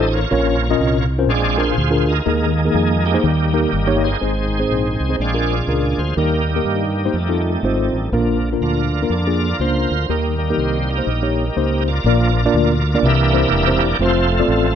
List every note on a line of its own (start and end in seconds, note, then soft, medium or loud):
0.00 0.24 A1 medium
0.00 0.18 D#4 medium
0.00 0.18 F4 medium
0.00 0.18 A4 medium
0.00 0.18 C5 medium
0.00 0.14 D#5 loud
0.11 1.06 F4 medium
0.11 1.06 A#4 medium
0.11 1.05 C#5 medium
0.31 0.73 A#1 loud
0.31 1.06 A#2 medium
0.31 0.67 F3 medium
0.31 0.67 A#3 medium
0.31 0.55 C#4 medium
0.31 0.68 C#4 medium
0.31 0.55 F4 medium
0.31 0.55 A#4 medium
0.31 0.55 C#5 medium
0.70 0.97 C#4 medium
0.70 0.97 F4 medium
0.70 0.97 A#4 medium
0.70 0.97 D#5 loud
0.80 1.30 C2 medium
1.19 1.29 C#4 medium
1.19 1.29 F4 medium
1.19 1.29 A#4 medium
1.19 1.29 C5 medium
1.27 1.71 A#1 loud
1.27 2.02 A#2 medium
1.27 1.64 G#3 medium
1.27 1.65 C4 medium
1.27 1.65 D4 medium
1.27 1.58 F4 medium
1.27 1.59 G#4 medium
1.31 1.58 D5 loud
1.57 1.73 D4 medium
1.57 1.73 F4 medium
1.57 2.23 F4 medium
1.57 1.73 G#4 medium
1.57 2.23 G#4 medium
1.57 1.73 A#4 medium
1.57 1.99 C5 loud
1.78 2.19 D2 medium
1.91 2.12 D4 medium
1.91 2.12 F4 medium
1.91 2.12 G#4 medium
1.91 2.12 A#4 medium
2.00 2.08 C5 soft
2.09 2.27 D#4 medium
2.09 2.54 A#4 medium
2.26 2.68 D#2 loud
2.26 3.01 D#3 medium
2.26 3.20 G#3 medium
2.26 2.50 A#3 medium
2.26 3.05 A#3 medium
2.26 2.50 D#4 medium
2.26 3.05 D#4 medium
2.26 2.50 G#4 medium
2.26 2.50 A#4 medium
2.65 2.91 A#3 medium
2.65 2.91 D#4 medium
2.65 2.91 G#4 medium
2.65 2.92 A#4 medium
2.74 3.16 F2 medium
2.74 2.89 G#4 medium
3.05 3.23 A#3 medium
3.05 3.24 D#4 medium
3.05 3.99 G4 loud
3.14 3.24 A#3 medium
3.14 3.24 D#4 medium
3.14 3.24 G#4 medium
3.14 3.24 C5 medium
3.23 3.65 D#2 loud
3.23 3.98 D#3 medium
3.23 4.18 G3 medium
3.23 4.18 A#3 soft
3.23 4.03 D#4 medium
3.54 3.69 A#3 medium
3.54 3.69 D#4 medium
3.54 3.69 G4 medium
3.54 3.69 A#4 medium
3.73 4.14 G1 medium
3.87 4.08 A#3 medium
3.87 4.08 D#4 medium
3.87 4.08 G4 medium
3.87 4.08 C#5 medium
4.04 4.23 D#4 medium
4.04 5.16 G#4 medium
4.04 5.16 C5 medium
4.21 4.63 G#1 medium
4.21 4.96 G#2 medium
4.21 5.19 D#3 medium
4.21 6.16 G#3 medium
4.21 5.16 G#3 soft
4.21 4.45 C4 medium
4.21 5.19 C4 medium
4.21 5.16 C4 soft
4.21 4.45 D#4 medium
4.21 5.19 D#4 medium
4.21 5.17 D#4 soft
4.21 4.45 G#4 medium
4.21 4.45 C5 medium
4.60 4.86 C4 medium
4.60 4.86 D#4 medium
4.60 4.86 G#4 medium
4.60 4.86 C5 medium
4.71 4.96 A#1 medium
5.00 5.16 C2 medium
5.09 5.19 C4 medium
5.09 5.19 D#4 medium
5.09 5.19 G#4 medium
5.09 5.19 C5 medium
5.18 5.61 A#1 medium
5.18 5.94 A#2 medium
5.18 6.16 F3 medium
5.18 5.55 G#3 soft
5.18 7.13 A#3 medium
5.18 5.56 C4 soft
5.18 6.16 D4 medium
5.18 5.56 D4 medium
5.18 6.14 F4 medium
5.18 5.67 D5 medium
5.22 6.14 G#4 medium
5.34 5.55 D4 medium
5.34 5.55 F4 medium
5.34 5.55 G#4 medium
5.34 5.55 A#4 medium
5.67 5.93 C#2 medium
5.67 5.99 D4 medium
5.67 5.99 F4 medium
5.67 5.99 G#4 medium
5.67 5.99 A#4 medium
5.67 5.99 D5 medium
5.98 6.14 D2 medium
5.98 6.16 C5 medium
6.16 6.59 D#2 medium
6.16 8.11 D#3 medium
6.16 6.92 D#3 soft
6.16 7.14 G3 medium
6.16 7.11 G3 soft
6.16 6.41 A#3 medium
6.16 6.48 A#3 soft
6.16 7.14 D#4 medium
6.16 6.41 D#4 medium
6.16 6.48 D#4 medium
6.16 6.41 G4 medium
6.16 6.48 G4 medium
6.16 6.41 A#4 medium
6.16 6.45 A#4 medium
6.49 7.42 A#3 medium
6.49 7.15 D#4 medium
6.49 7.42 G4 medium
6.56 6.83 A#3 medium
6.56 6.82 D#4 medium
6.56 6.82 G4 medium
6.56 6.83 A#4 medium
6.65 7.07 G2 medium
7.05 7.15 A#3 medium
7.05 7.15 D#4 medium
7.05 7.15 G4 medium
7.05 7.15 C5 medium
7.13 7.56 F2 medium
7.13 10.06 F3 medium
7.13 8.09 G3 soft
7.13 8.12 A3 medium
7.13 8.10 A3 soft
7.13 8.12 C4 medium
7.13 8.10 D#4 medium
7.29 7.50 C4 medium
7.29 7.50 D#4 medium
7.29 7.50 F4 medium
7.29 7.50 A4 medium
7.63 7.89 G#1 medium
7.63 7.95 C4 medium
7.63 7.95 D#4 medium
7.63 7.95 F4 medium
7.63 7.96 C5 medium
7.93 8.10 A1 medium
8.11 8.54 A#1 loud
8.11 8.88 A#2 medium
8.11 10.07 D3 medium
8.11 8.49 F3 soft
8.11 12.01 A#3 medium
8.11 8.37 A#3 medium
8.11 8.49 A#3 soft
8.11 10.07 D4 medium
8.11 8.37 D4 medium
8.11 8.50 D4 medium
8.11 8.37 F4 medium
8.11 8.37 A#4 medium
8.52 8.79 A#3 medium
8.52 8.79 D4 medium
8.52 8.79 F4 medium
8.52 8.79 A#4 medium
8.61 9.04 D2 medium
8.61 9.57 D4 medium
8.61 9.12 F4 medium
8.61 9.12 A#4 medium
9.02 9.13 A#3 medium
9.02 9.13 D4 medium
9.02 9.13 F4 medium
9.02 9.13 A#4 medium
9.10 9.52 F2 medium
9.10 9.60 F4 medium
9.10 10.07 A#4 medium
9.10 9.58 D5 medium
9.27 9.48 A#3 medium
9.27 9.47 D4 medium
9.27 9.48 F4 medium
9.27 9.48 G#4 medium
9.59 9.85 C#2 medium
9.59 9.92 A#3 medium
9.59 9.92 D4 medium
9.59 9.92 F4 medium
9.59 10.07 F4 medium
9.59 9.92 C5 medium
9.59 10.12 C5 medium
9.91 10.07 D2 medium
10.09 10.51 D#2 loud
10.09 12.04 D#3 medium
10.09 10.85 D#3 medium
10.09 12.03 G3 medium
10.09 10.33 A#3 medium
10.09 10.33 D#4 medium
10.09 12.04 D#4 medium
10.09 10.38 D#4 medium
10.09 10.33 G4 medium
10.09 10.90 G4 medium
10.09 10.33 A#4 medium
10.09 10.61 A#4 medium
10.38 11.04 G3 soft
10.38 11.04 A#3 soft
10.38 10.89 D#4 medium
10.50 10.76 A#3 medium
10.50 10.76 D#4 medium
10.50 10.76 G4 medium
10.50 10.76 A#4 medium
10.58 11.00 C2 medium
10.58 10.90 C5 medium
10.90 11.83 D#4 soft
10.90 11.84 G4 soft
10.90 11.83 A#4 medium
10.98 11.09 A#3 medium
10.98 11.09 D#4 medium
10.98 11.09 G4 medium
10.98 11.09 C5 medium
11.07 11.49 A#1 medium
11.22 11.43 A#3 medium
11.22 11.43 D#4 medium
11.22 11.43 G4 medium
11.22 11.43 C#5 medium
11.57 11.98 C#2 medium
11.57 11.88 A#3 medium
11.57 11.88 D#4 medium
11.57 11.88 G4 medium
11.57 11.88 C5 medium
11.88 13.00 F4 medium
11.88 13.00 A#4 medium
11.88 13.07 D5 medium
12.04 12.46 A#1 loud
12.04 12.80 A#2 medium
12.04 12.41 F3 medium
12.04 12.29 A#3 medium
12.04 12.42 A#3 medium
12.04 12.30 D4 medium
12.04 12.29 F4 medium
12.04 12.29 A#4 medium
12.04 12.30 D5 medium
12.09 12.43 D4 medium
12.45 12.71 A#3 medium
12.45 12.71 D4 medium
12.45 12.71 F4 medium
12.45 12.71 A#4 medium
12.45 12.71 D5 loud
12.54 12.96 D2 medium
12.94 13.04 A#3 medium
12.94 13.04 D4 medium
12.94 13.04 F4 medium
12.94 13.04 A#4 medium
12.94 13.04 D5 medium
13.03 13.44 C2 loud
13.03 13.78 C3 medium
13.03 13.97 E3 medium
13.03 13.97 A#3 medium
13.03 13.98 D4 medium
13.03 13.98 G4 medium
13.03 13.98 A#4 medium
13.03 13.33 E5 loud
13.33 13.48 C4 medium
13.33 13.48 E4 medium
13.33 13.48 G4 medium
13.33 13.48 A#4 medium
13.33 13.48 C5 medium
13.33 13.53 E5 loud
13.51 13.93 E1 medium
13.51 13.83 E5 loud
13.67 13.87 C4 medium
13.67 13.87 E4 medium
13.67 13.87 G4 medium
13.67 13.87 A#4 medium
13.67 13.87 C5 medium
13.83 14.00 D5 loud
13.99 14.41 F1 loud
13.99 14.75 F3 soft
13.99 14.24 A3 medium
13.99 14.75 A3 medium
13.99 14.24 C4 medium
13.99 14.31 C4 medium
13.99 14.24 F4 medium
13.99 14.31 F4 medium
13.99 14.24 A4 medium
13.99 14.31 A4 medium
13.99 14.24 C5 medium
13.99 14.32 C5 loud
14.32 14.75 C4 medium
14.32 14.75 F4 medium
14.32 14.75 A4 medium
14.39 14.66 A3 medium
14.39 14.66 C4 medium
14.39 14.65 F4 medium
14.39 14.66 A4 medium
14.39 14.65 D5 medium
14.48 14.75 A1 loud